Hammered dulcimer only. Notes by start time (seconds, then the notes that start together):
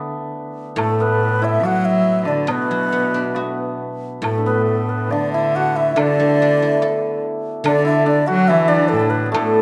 Already playing: A3 B3 D4 E4
0.77 A3
1.00 B3
1.42 E4
1.63 F#4
2.22 D4 E4
2.48 B3
3.35 B3
4.23 A3
4.38 D4
4.46 B3
5.12 D4
5.34 E4
5.56 F#4
5.76 E4
5.91 E4
5.96 D4
7.65 D4
7.85 E4
8.06 D4
8.27 F#4
8.49 E4
8.68 D4
9.26 B3
9.32 A3